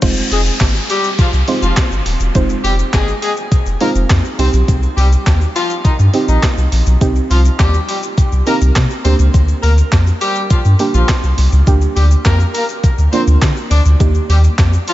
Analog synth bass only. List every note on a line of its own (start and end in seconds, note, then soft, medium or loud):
0.02 0.21 F1 loud
0.31 0.50 F1 loud
0.61 0.79 G#1 loud
1.33 1.42 C2 medium
1.62 1.72 F1 loud
1.91 2.01 G1 loud
2.06 2.15 D#1 loud
2.20 2.30 E1 medium
2.35 2.54 F1 loud
2.64 2.83 F1 loud
2.94 3.12 G1 medium
3.66 3.75 F1 loud
3.95 4.04 F1 medium
4.10 4.19 F2 loud
4.39 4.48 C2 loud
4.53 4.63 B1 loud
4.68 4.87 C2 loud
4.97 5.16 C2 loud
5.27 5.45 D#2 medium
5.99 6.08 G2 medium
6.28 6.38 A#1 medium
6.57 6.67 C2 loud
6.72 6.81 A#1 loud
6.87 6.96 B1 loud
7.01 7.20 C2 loud
7.30 7.49 C2 loud
7.59 7.78 D#2 medium
8.32 8.42 C2 loud
8.61 8.71 C2 medium
8.76 8.85 C3 loud
9.05 9.14 D2 loud
9.19 9.29 C#2 loud
9.34 9.53 D2 loud
9.63 9.82 D2 medium
9.92 10.11 F2 loud
10.65 10.74 G2 loud
10.94 11.04 A#1 medium
11.23 11.33 C2 loud
11.38 11.47 C2 loud
11.53 11.62 C#2 loud
11.67 11.86 D2 loud
11.96 12.15 D2 loud
12.25 12.44 F2 loud
12.98 13.08 D2 loud
13.27 13.37 D2 medium
13.42 13.51 D3 loud
13.71 13.80 D2 loud
13.85 13.95 D2 loud
14.00 14.19 D#2 loud
14.29 14.48 D#2 loud
14.59 14.77 F2 medium